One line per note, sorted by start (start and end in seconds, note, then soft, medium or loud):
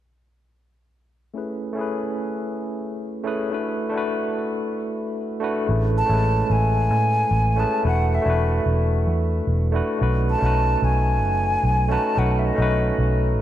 1.34 1.72 A3 medium
1.34 1.73 C#4 medium
1.34 1.73 E4 medium
1.34 1.74 G#4 medium
1.34 1.74 B4 medium
1.73 3.20 A3 medium
1.73 3.21 C#4 medium
1.77 3.22 E4 medium
1.77 3.23 G#4 medium
1.81 3.24 B4 medium
3.24 3.48 A3 medium
3.24 3.49 C#4 medium
3.24 3.49 E4 medium
3.24 3.50 G#4 medium
3.24 3.50 B4 medium
3.50 3.88 A3 medium
3.50 3.89 D4 medium
3.50 3.90 E4 medium
3.50 3.90 F#4 medium
3.50 3.91 B4 medium
3.90 5.37 A3 medium
3.90 5.38 D4 medium
3.90 5.39 E4 medium
3.96 5.40 F#4 medium
3.96 5.41 B4 medium
5.40 5.65 A3 medium
5.40 5.65 D4 medium
5.40 5.66 E4 medium
5.40 5.66 F#4 medium
5.44 5.67 B4 medium
5.67 6.01 A1 medium
5.67 6.05 A3 medium
5.67 6.06 C#4 medium
5.67 6.06 E4 medium
5.67 6.07 G#4 medium
5.71 6.07 B4 medium
5.98 6.53 A5 loud
6.06 6.42 A1 medium
6.06 7.53 A3 medium
6.06 7.54 C#4 medium
6.06 7.55 E4 medium
6.12 7.56 G#3 medium
6.12 7.57 B4 medium
6.50 6.91 A1 medium
6.50 7.61 G#5 loud
6.91 7.23 A2 medium
7.31 7.63 A1 medium
7.56 7.81 A3 medium
7.56 7.81 C#4 medium
7.56 7.82 E4 medium
7.56 7.82 G#4 medium
7.56 7.83 B4 medium
7.56 7.86 A5 loud
7.83 8.17 E1 medium
7.83 8.21 A3 medium
7.83 8.22 D4 medium
7.83 8.22 E4 medium
7.83 8.23 F#4 medium
7.83 8.23 B4 medium
7.87 8.16 F#5 loud
8.15 8.67 E5 medium
8.22 8.58 E1 medium
8.22 9.69 A3 medium
8.22 9.70 D4 medium
8.22 9.71 E4 medium
8.28 9.72 F#4 medium
8.28 9.73 B4 loud
8.66 9.07 E1 loud
9.07 9.39 E2 medium
9.47 9.80 E1 medium
9.72 9.97 A3 medium
9.72 9.97 D4 medium
9.72 9.98 E4 medium
9.72 9.98 F#4 medium
9.72 9.99 B4 medium
9.99 10.34 B1 medium
9.99 10.37 A3 medium
9.99 10.38 C#4 medium
9.99 10.39 D#4 medium
9.99 10.39 F#4 medium
9.99 10.40 B4 medium
10.30 10.86 A5 loud
10.38 10.74 B1 medium
10.38 11.85 A3 medium
10.38 11.86 C#4 medium
10.38 11.87 D#4 medium
10.44 11.88 F#4 medium
10.44 11.89 B4 loud
10.82 11.23 B1 loud
10.82 11.93 G#5 loud
11.23 11.55 F#1 medium
11.63 11.96 B1 medium
11.88 12.13 A3 medium
11.88 12.14 C#4 medium
11.88 12.14 D#4 medium
11.88 12.15 F#4 medium
11.88 12.15 B4 loud
11.88 12.20 A5 loud
12.15 12.50 B1 medium
12.15 12.53 A3 medium
12.15 12.54 C#4 medium
12.15 12.55 D#4 medium
12.15 12.55 F#4 medium
12.15 12.56 B4 medium
12.15 12.40 F#5 medium
12.39 12.47 E5 medium
12.45 12.99 D#5 medium
12.54 13.42 A3 medium
12.54 13.42 C#4 medium
12.58 12.91 B1 medium
12.58 13.42 D#4 medium
12.58 13.42 F#4 medium
12.58 13.42 B4 loud
12.98 13.39 B1 medium